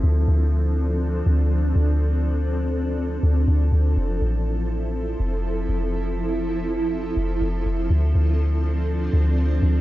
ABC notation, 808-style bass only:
X:1
M:4/4
L:1/8
Q:1/4=122
K:Dm
V:1 name="808-style bass" clef=bass
D,, D,,4 D,,2 D,,- | D,,4- D,, D,, D,, D,, | F,,, A,,,4 F,,,2 F,,,- | F,,,4- F,,, F,,, F,,, F,,, |
D,, D,,4 D,,2 D,, |]